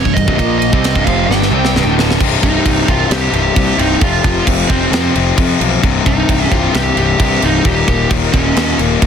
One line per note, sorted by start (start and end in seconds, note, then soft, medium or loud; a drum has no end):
0.00 0.14 C2 medium
0.00 0.14 C#5 medium
0.04 0.15 C1 medium
0.04 0.14 G2 medium
0.04 kick medium
0.14 0.27 C1 medium
0.14 0.26 C2 medium
0.14 0.26 G2 medium
0.14 0.35 D#5 medium
0.14 kick medium
0.14 ride medium
0.27 0.38 C1 loud
0.27 0.37 C2 medium
0.27 0.38 G2 loud
0.27 kick medium
0.37 0.70 A#1 loud
0.37 0.71 A#2 medium
0.37 0.72 F3 loud
0.37 0.72 A#3 loud
0.37 0.57 D#5 medium
0.37 kick medium
0.37 ride medium
0.59 1.06 D#5 loud
0.59 ride medium
0.72 0.94 C2 loud
0.72 0.94 C3 medium
0.72 0.94 G3 loud
0.72 0.95 C4 loud
0.72 kick loud
0.84 snare loud
0.84 ride loud
0.95 1.06 C1 loud
0.95 1.05 C2 medium
0.95 1.06 G2 loud
0.95 kick medium
1.04 1.28 F1 medium
1.04 1.28 F2 loud
1.04 1.29 C3 medium
1.04 1.29 F3 loud
1.04 1.27 F5 medium
1.04 kick medium
1.04 ride medium
1.27 1.50 G1 medium
1.27 1.51 G2 medium
1.27 1.51 D3 loud
1.27 1.51 G3 loud
1.27 1.92 G5 loud
1.31 snare medium
1.42 snare medium
1.51 1.72 C2 medium
1.51 1.73 C3 medium
1.51 1.74 G3 medium
1.51 1.74 C4 loud
1.65 snare medium
1.74 1.84 C1 medium
1.74 1.85 C2 medium
1.74 1.85 G2 loud
1.74 snare loud
1.85 2.17 D1 loud
1.85 2.19 D2 medium
1.85 2.19 A2 medium
1.85 2.20 D3 medium
1.99 snare loud
2.11 snare loud
2.19 2.36 C1 medium
2.19 2.41 C2 medium
2.19 2.42 G2 medium
2.19 2.42 C3 loud
2.19 kick loud
2.19 crash loud
2.19 crash medium
2.42 2.59 C1 loud
2.42 2.64 C2 medium
2.42 2.65 G2 medium
2.42 2.65 C3 loud
2.42 2.89 D#4 medium
2.42 kick medium
2.42 crash medium
2.65 2.82 C1 medium
2.65 2.86 C2 loud
2.65 2.87 G2 loud
2.65 2.87 C3 medium
2.65 kick medium
2.65 crash medium
2.88 3.04 C1 medium
2.88 3.08 C2 medium
2.88 3.09 G2 loud
2.88 3.10 C3 loud
2.88 3.12 F4 loud
2.88 kick medium
2.88 crash medium
3.10 3.31 C2 loud
3.10 3.27 C2 loud
3.10 3.32 G2 loud
3.10 3.32 C3 loud
3.10 3.33 G4 loud
3.10 snare loud
3.10 crash medium
3.32 3.49 C1 loud
3.32 3.54 C2 loud
3.32 3.54 G2 medium
3.32 3.55 C3 loud
3.32 3.81 G4 loud
3.32 crash medium
3.55 3.76 C2 medium
3.55 3.72 C2 medium
3.55 3.77 G2 loud
3.55 3.78 C3 loud
3.55 kick loud
3.55 crash medium
3.78 3.94 C1 loud
3.78 3.99 C2 medium
3.78 4.00 G2 medium
3.78 3.99 C3 medium
3.78 4.02 D#4 medium
3.78 crash medium
4.00 4.17 F1 medium
4.00 4.22 F2 medium
4.00 4.23 C3 loud
4.00 4.23 F3 loud
4.00 4.44 F4 medium
4.00 kick loud
4.00 crash medium
4.23 4.40 F1 loud
4.23 4.45 F2 medium
4.23 4.46 C3 medium
4.23 4.46 F3 loud
4.23 kick medium
4.23 crash medium
4.46 4.63 F1 loud
4.46 4.68 F2 medium
4.46 4.69 C3 loud
4.46 4.69 F3 loud
4.46 kick medium
4.46 crash loud
4.68 4.86 F1 medium
4.68 4.90 F2 loud
4.68 4.91 C3 loud
4.68 4.91 F3 loud
4.68 5.11 C4 loud
4.68 kick medium
4.68 crash medium
4.91 5.13 F2 loud
4.91 5.08 F2 medium
4.91 5.14 C3 loud
4.91 5.14 F3 loud
4.91 snare loud
4.91 crash medium
5.14 5.32 F1 medium
5.14 5.36 F2 medium
5.14 5.36 C3 loud
5.14 5.37 F3 loud
5.14 crash medium
5.37 5.58 F2 medium
5.37 5.54 F2 medium
5.37 5.59 C3 medium
5.37 5.60 F3 loud
5.37 kick loud
5.37 crash loud
5.60 5.77 B1 medium
5.60 5.81 F2 medium
5.60 5.82 C3 medium
5.60 5.82 F3 loud
5.60 crash medium
5.82 6.00 C1 medium
5.82 6.03 C2 loud
5.82 6.03 G2 loud
5.82 6.04 C3 loud
5.82 kick loud
5.82 crash medium
6.04 6.22 C1 medium
6.04 6.26 C2 loud
6.04 6.26 G2 medium
6.04 6.27 C3 medium
6.04 6.53 D#4 loud
6.04 kick medium
6.04 crash medium
6.27 6.45 C1 loud
6.27 6.49 C2 medium
6.27 6.49 G2 loud
6.27 6.50 C3 loud
6.27 kick loud
6.27 crash loud
6.50 6.68 C1 medium
6.50 6.71 C2 loud
6.50 6.72 G2 loud
6.50 6.72 C3 loud
6.50 6.72 F4 loud
6.50 kick medium
6.50 crash medium
6.72 6.94 C2 loud
6.72 6.91 C2 loud
6.72 6.95 G2 loud
6.72 6.96 C3 loud
6.72 6.98 G4 loud
6.72 snare loud
6.72 crash medium
6.96 7.13 C1 medium
6.96 7.17 C2 loud
6.96 7.17 G2 loud
6.96 7.18 C3 loud
6.96 7.45 G4 loud
6.96 crash medium
7.18 7.40 C2 medium
7.18 7.36 C2 medium
7.18 7.40 G2 medium
7.18 7.41 C3 loud
7.18 kick loud
7.18 crash loud
7.41 7.59 C1 loud
7.41 7.63 C2 medium
7.41 7.63 G2 medium
7.41 7.63 C3 medium
7.41 7.67 D#4 medium
7.41 crash medium
7.64 7.81 D#1 loud
7.64 7.86 D#2 loud
7.64 7.87 A#2 loud
7.64 7.87 D#3 loud
7.64 8.08 G4 medium
7.64 kick loud
7.64 crash medium
7.87 8.04 D#1 loud
7.87 8.09 D#2 medium
7.87 8.09 A#2 loud
7.87 8.10 D#3 loud
7.87 kick medium
7.87 crash medium
8.10 8.27 D#1 medium
8.10 8.31 D#2 loud
8.10 8.32 A#2 loud
8.10 8.33 D#3 loud
8.10 kick loud
8.10 crash loud
8.32 8.50 D#1 medium
8.32 8.54 D#2 medium
8.32 8.55 A#2 loud
8.32 8.55 D#3 loud
8.32 8.75 C#4 loud
8.32 kick medium
8.32 crash medium
8.55 8.78 D#2 medium
8.55 8.73 D#2 loud
8.55 8.78 A#2 loud
8.55 8.79 D#3 loud
8.55 snare loud
8.55 crash medium
8.79 8.95 D#1 medium
8.79 9.00 D#2 medium
8.79 9.01 A#2 medium
8.79 9.02 D#3 medium
8.79 crash medium
9.02 9.06 D#2 medium
9.02 9.06 A#2 loud
9.02 9.06 D#3 loud
9.02 kick loud
9.02 crash medium